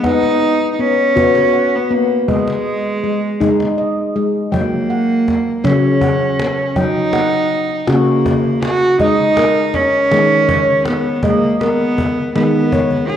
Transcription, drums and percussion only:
0, 0, Header, 1, 2, 480
1, 0, Start_track
1, 0, Tempo, 745342
1, 26, Time_signature, 6, 3, 24, 8
1, 8480, End_track
2, 0, Start_track
2, 0, Title_t, "Cajon"
2, 25, Note_on_c, 9, 36, 58
2, 25, Note_on_c, 9, 38, 17
2, 90, Note_off_c, 9, 36, 0
2, 90, Note_off_c, 9, 38, 0
2, 148, Note_on_c, 9, 38, 42
2, 212, Note_off_c, 9, 38, 0
2, 269, Note_on_c, 9, 38, 18
2, 333, Note_off_c, 9, 38, 0
2, 631, Note_on_c, 9, 38, 19
2, 696, Note_off_c, 9, 38, 0
2, 752, Note_on_c, 9, 36, 56
2, 817, Note_off_c, 9, 36, 0
2, 870, Note_on_c, 9, 38, 45
2, 935, Note_off_c, 9, 38, 0
2, 1470, Note_on_c, 9, 36, 56
2, 1534, Note_off_c, 9, 36, 0
2, 1594, Note_on_c, 9, 38, 46
2, 1658, Note_off_c, 9, 38, 0
2, 2076, Note_on_c, 9, 38, 18
2, 2140, Note_off_c, 9, 38, 0
2, 2198, Note_on_c, 9, 36, 54
2, 2262, Note_off_c, 9, 36, 0
2, 2319, Note_on_c, 9, 38, 46
2, 2384, Note_off_c, 9, 38, 0
2, 2557, Note_on_c, 9, 38, 18
2, 2621, Note_off_c, 9, 38, 0
2, 2800, Note_on_c, 9, 38, 15
2, 2864, Note_off_c, 9, 38, 0
2, 2922, Note_on_c, 9, 36, 53
2, 2986, Note_off_c, 9, 36, 0
2, 3044, Note_on_c, 9, 38, 17
2, 3108, Note_off_c, 9, 38, 0
2, 3399, Note_on_c, 9, 36, 53
2, 3399, Note_on_c, 9, 38, 19
2, 3463, Note_off_c, 9, 36, 0
2, 3463, Note_off_c, 9, 38, 0
2, 3519, Note_on_c, 9, 38, 19
2, 3584, Note_off_c, 9, 38, 0
2, 3635, Note_on_c, 9, 38, 60
2, 3700, Note_off_c, 9, 38, 0
2, 3755, Note_on_c, 9, 38, 18
2, 3819, Note_off_c, 9, 38, 0
2, 3873, Note_on_c, 9, 36, 61
2, 3938, Note_off_c, 9, 36, 0
2, 4119, Note_on_c, 9, 38, 65
2, 4183, Note_off_c, 9, 38, 0
2, 4353, Note_on_c, 9, 36, 52
2, 4417, Note_off_c, 9, 36, 0
2, 4592, Note_on_c, 9, 38, 59
2, 4656, Note_off_c, 9, 38, 0
2, 4832, Note_on_c, 9, 38, 20
2, 4896, Note_off_c, 9, 38, 0
2, 4953, Note_on_c, 9, 38, 17
2, 5017, Note_off_c, 9, 38, 0
2, 5072, Note_on_c, 9, 38, 57
2, 5136, Note_off_c, 9, 38, 0
2, 5196, Note_on_c, 9, 38, 20
2, 5260, Note_off_c, 9, 38, 0
2, 5318, Note_on_c, 9, 36, 64
2, 5382, Note_off_c, 9, 36, 0
2, 5554, Note_on_c, 9, 38, 64
2, 5618, Note_off_c, 9, 38, 0
2, 5792, Note_on_c, 9, 36, 51
2, 5857, Note_off_c, 9, 36, 0
2, 5913, Note_on_c, 9, 38, 19
2, 5977, Note_off_c, 9, 38, 0
2, 6033, Note_on_c, 9, 38, 62
2, 6097, Note_off_c, 9, 38, 0
2, 6271, Note_on_c, 9, 36, 55
2, 6271, Note_on_c, 9, 38, 19
2, 6336, Note_off_c, 9, 36, 0
2, 6336, Note_off_c, 9, 38, 0
2, 6392, Note_on_c, 9, 38, 21
2, 6457, Note_off_c, 9, 38, 0
2, 6513, Note_on_c, 9, 38, 55
2, 6578, Note_off_c, 9, 38, 0
2, 6632, Note_on_c, 9, 38, 20
2, 6697, Note_off_c, 9, 38, 0
2, 6754, Note_on_c, 9, 36, 66
2, 6819, Note_off_c, 9, 36, 0
2, 6992, Note_on_c, 9, 38, 61
2, 7056, Note_off_c, 9, 38, 0
2, 7230, Note_on_c, 9, 36, 59
2, 7295, Note_off_c, 9, 36, 0
2, 7476, Note_on_c, 9, 38, 53
2, 7540, Note_off_c, 9, 38, 0
2, 7715, Note_on_c, 9, 36, 55
2, 7780, Note_off_c, 9, 36, 0
2, 7957, Note_on_c, 9, 38, 53
2, 8021, Note_off_c, 9, 38, 0
2, 8194, Note_on_c, 9, 36, 58
2, 8259, Note_off_c, 9, 36, 0
2, 8312, Note_on_c, 9, 36, 32
2, 8376, Note_off_c, 9, 36, 0
2, 8434, Note_on_c, 9, 38, 38
2, 8480, Note_off_c, 9, 38, 0
2, 8480, End_track
0, 0, End_of_file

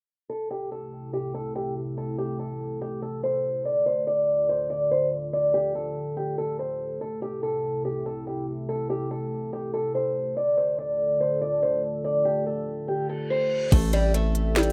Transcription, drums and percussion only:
0, 0, Header, 1, 2, 480
1, 0, Start_track
1, 0, Key_signature, 0, "minor"
1, 0, Tempo, 419580
1, 337, Time_signature, 4, 2, 24, 8
1, 16844, End_track
2, 0, Start_track
2, 0, Title_t, "Drums"
2, 15697, Note_on_c, 9, 36, 109
2, 15697, Note_on_c, 9, 42, 76
2, 15697, Note_on_c, 9, 49, 100
2, 15812, Note_off_c, 9, 36, 0
2, 15812, Note_off_c, 9, 42, 0
2, 15812, Note_off_c, 9, 49, 0
2, 15936, Note_on_c, 9, 42, 80
2, 16050, Note_off_c, 9, 42, 0
2, 16180, Note_on_c, 9, 42, 89
2, 16294, Note_off_c, 9, 42, 0
2, 16416, Note_on_c, 9, 42, 74
2, 16530, Note_off_c, 9, 42, 0
2, 16657, Note_on_c, 9, 26, 89
2, 16657, Note_on_c, 9, 38, 116
2, 16657, Note_on_c, 9, 42, 44
2, 16738, Note_off_c, 9, 42, 0
2, 16738, Note_on_c, 9, 42, 49
2, 16771, Note_off_c, 9, 38, 0
2, 16772, Note_off_c, 9, 26, 0
2, 16844, Note_off_c, 9, 42, 0
2, 16844, End_track
0, 0, End_of_file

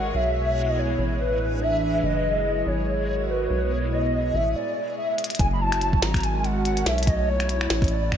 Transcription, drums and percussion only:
0, 0, Header, 1, 2, 480
1, 0, Start_track
1, 0, Tempo, 419580
1, 411, Time_signature, 4, 2, 24, 8
1, 9346, End_track
2, 0, Start_track
2, 0, Title_t, "Drums"
2, 5930, Note_on_c, 9, 42, 54
2, 5997, Note_off_c, 9, 42, 0
2, 5997, Note_on_c, 9, 42, 63
2, 6065, Note_off_c, 9, 42, 0
2, 6065, Note_on_c, 9, 42, 72
2, 6118, Note_off_c, 9, 42, 0
2, 6118, Note_on_c, 9, 42, 82
2, 6170, Note_on_c, 9, 36, 106
2, 6172, Note_off_c, 9, 42, 0
2, 6172, Note_on_c, 9, 42, 66
2, 6285, Note_off_c, 9, 36, 0
2, 6286, Note_off_c, 9, 42, 0
2, 6547, Note_on_c, 9, 26, 55
2, 6547, Note_on_c, 9, 42, 53
2, 6652, Note_off_c, 9, 42, 0
2, 6652, Note_on_c, 9, 42, 69
2, 6661, Note_off_c, 9, 26, 0
2, 6766, Note_off_c, 9, 42, 0
2, 6785, Note_on_c, 9, 36, 78
2, 6891, Note_on_c, 9, 38, 117
2, 6899, Note_off_c, 9, 36, 0
2, 7006, Note_off_c, 9, 38, 0
2, 7025, Note_on_c, 9, 36, 119
2, 7028, Note_on_c, 9, 26, 63
2, 7028, Note_on_c, 9, 42, 53
2, 7053, Note_off_c, 9, 42, 0
2, 7053, Note_on_c, 9, 42, 43
2, 7099, Note_off_c, 9, 42, 0
2, 7099, Note_on_c, 9, 42, 36
2, 7133, Note_off_c, 9, 42, 0
2, 7133, Note_on_c, 9, 42, 69
2, 7139, Note_off_c, 9, 36, 0
2, 7142, Note_off_c, 9, 26, 0
2, 7247, Note_off_c, 9, 42, 0
2, 7372, Note_on_c, 9, 42, 38
2, 7487, Note_off_c, 9, 42, 0
2, 7611, Note_on_c, 9, 42, 70
2, 7726, Note_off_c, 9, 42, 0
2, 7745, Note_on_c, 9, 42, 51
2, 7851, Note_on_c, 9, 38, 118
2, 7859, Note_off_c, 9, 42, 0
2, 7966, Note_off_c, 9, 38, 0
2, 7987, Note_on_c, 9, 42, 54
2, 8039, Note_off_c, 9, 42, 0
2, 8039, Note_on_c, 9, 42, 67
2, 8091, Note_on_c, 9, 36, 109
2, 8092, Note_off_c, 9, 42, 0
2, 8092, Note_on_c, 9, 42, 66
2, 8205, Note_off_c, 9, 36, 0
2, 8206, Note_off_c, 9, 42, 0
2, 8466, Note_on_c, 9, 26, 54
2, 8466, Note_on_c, 9, 42, 55
2, 8572, Note_off_c, 9, 42, 0
2, 8572, Note_on_c, 9, 42, 72
2, 8581, Note_off_c, 9, 26, 0
2, 8686, Note_off_c, 9, 42, 0
2, 8706, Note_on_c, 9, 26, 61
2, 8811, Note_on_c, 9, 38, 121
2, 8821, Note_off_c, 9, 26, 0
2, 8925, Note_off_c, 9, 38, 0
2, 8945, Note_on_c, 9, 36, 126
2, 8946, Note_on_c, 9, 42, 26
2, 8971, Note_off_c, 9, 42, 0
2, 8971, Note_on_c, 9, 42, 34
2, 9015, Note_off_c, 9, 42, 0
2, 9015, Note_on_c, 9, 42, 45
2, 9059, Note_off_c, 9, 36, 0
2, 9130, Note_off_c, 9, 42, 0
2, 9289, Note_on_c, 9, 26, 82
2, 9290, Note_on_c, 9, 36, 82
2, 9346, Note_off_c, 9, 26, 0
2, 9346, Note_off_c, 9, 36, 0
2, 9346, End_track
0, 0, End_of_file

